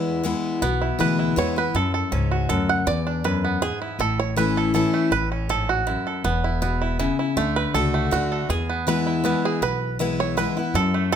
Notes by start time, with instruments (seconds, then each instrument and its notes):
Already playing: steel-string acoustic guitar E2 E3 G#3 B3 E4, upright bass E2
0.24 steel-string acoustic guitar E3 G#3 B3 E4
0.62 upright bass B1, steel-string acoustic guitar B2, five-string banjo B3
0.82 five-string banjo E4
0.99 upright bass D2, steel-string acoustic guitar E3 G#3 B3 E4, five-string banjo B4
1.19 five-string banjo E4
1.36 upright bass E2, steel-string acoustic guitar E3 G#3 B3 E4, five-string banjo C#5
1.56 steel-string acoustic guitar B3 E4, five-string banjo B4
1.74 upright bass F#2, steel-string acoustic guitar F#2, five-string banjo A4
1.94 five-string banjo A4
2.12 upright bass C#2, steel-string acoustic guitar G#2, five-string banjo C#4
2.31 five-string banjo F#4
2.49 upright bass D2, steel-string acoustic guitar F#2, five-string banjo A4
2.69 five-string banjo F#5
2.86 upright bass E2, steel-string acoustic guitar E2, five-string banjo D5
3.07 five-string banjo D4
3.24 steel-string acoustic guitar F#2, five-string banjo B4
3.44 five-string banjo B3
3.62 steel-string acoustic guitar G#2, five-string banjo G#4
3.82 five-string banjo E4
3.99 upright bass A1, steel-string acoustic guitar A2, five-string banjo A4
4.20 five-string banjo C#5
4.36 steel-string acoustic guitar E3 A3 C#4 E4, five-string banjo B4
4.57 five-string banjo A4
4.74 steel-string acoustic guitar E3 A3 C#4 E4, five-string banjo A4
4.94 five-string banjo A3
5.11 upright bass A1, steel-string acoustic guitar A2, five-string banjo B4
5.32 five-string banjo C#4
5.49 steel-string acoustic guitar G#2, five-string banjo A4
5.69 five-string banjo F#4
5.87 steel-string acoustic guitar F#2, five-string banjo E4
6.07 five-string banjo A4
6.24 upright bass E1, steel-string acoustic guitar E2, five-string banjo B3
6.44 five-string banjo E4
6.62 steel-string acoustic guitar B2, five-string banjo B3
6.82 five-string banjo E4
6.99 steel-string acoustic guitar C#3, five-string banjo E4
7.19 five-string banjo E4
7.36 upright bass D2, steel-string acoustic guitar D3, five-string banjo A3
7.56 five-string banjo B4
7.74 upright bass C#2, steel-string acoustic guitar A3 D4 F#4, five-string banjo A4
7.94 five-string banjo A3
8.11 upright bass D2, steel-string acoustic guitar D3 A3 D4 F#4, five-string banjo F#4
8.32 five-string banjo A4
8.49 upright bass E2, steel-string acoustic guitar E2, five-string banjo G#4
8.70 five-string banjo B3
8.87 steel-string acoustic guitar E3 G#3 B3 E4, five-string banjo B4
9.07 five-string banjo E4
9.24 steel-string acoustic guitar E3 G#3 B3 E4, five-string banjo B3
9.45 five-string banjo G#4
9.62 upright bass B1, steel-string acoustic guitar B2, five-string banjo B4
9.99 steel-string acoustic guitar E3 G#3 B3 E4, five-string banjo E4
10.20 five-string banjo C#5
10.37 steel-string acoustic guitar E3 G#3 B3 E4, five-string banjo B4
10.57 steel-string acoustic guitar B3 E4, five-string banjo E4
10.74 upright bass F#2, steel-string acoustic guitar F#2, five-string banjo A4
10.94 five-string banjo A3
11.12 steel-string acoustic guitar G#2, five-string banjo A4